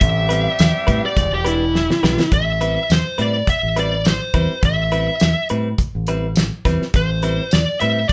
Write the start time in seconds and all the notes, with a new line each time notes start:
Already playing: C3 C4 E5
0.01 A1 G3 B3 G4, kick, closed hi-hat
0.29 G3 C4 E4 B4, closed hi-hat
0.59 E2, snare, closed hi-hat, tambourine
0.87 A2 G3 C4 E4 B4, kick, closed hi-hat
1.06 D5
1.15 E1 D3 G#3 D4, kick, closed hi-hat
1.32 E1 G4
1.45 G#3 D4 E4 G4 B4, closed hi-hat
1.75 snare
1.91 snare
2.03 B1 G#3 D4 G4 B4, snare
2.18 muted fingered electric bass stroke, snare
2.32 A1 E5, kick, closed hi-hat
2.61 G3 C4 E4 B4, closed hi-hat
2.90 E2 C5, snare, closed hi-hat, tambourine
3.18 A2 G3 C4 E4 B4 D5, closed hi-hat
3.47 E5, kick, closed hi-hat
3.63 A1
3.76 G3 C4 E4 B4 D5, closed hi-hat
4.05 C5, snare, closed hi-hat, tambourine
4.34 E2 G3 C4 E4 B4, kick, closed hi-hat
4.51 muted fingered electric bass stroke
4.63 A1 E5, kick, closed hi-hat
4.92 G3 C4 E4 B4, closed hi-hat
5.20 E2, snare, closed hi-hat, tambourine
5.49 A2 G3 C4 E4 B4, closed hi-hat
5.78 kick, closed hi-hat
5.95 A1
6.07 G3 C4 E4 B4, closed hi-hat
6.36 snare, closed hi-hat, tambourine
6.65 E2 G3 C4 E4 B4, kick, snare, closed hi-hat
6.82 muted fingered electric bass stroke, snare
6.94 A1 C5, kick, closed hi-hat
7.22 G3 C4 E4 B4, closed hi-hat
7.51 E2 D5, snare, closed hi-hat, tambourine
7.80 A2 G3 C4 E4 B4 E5, closed hi-hat
8.09 E5, kick, closed hi-hat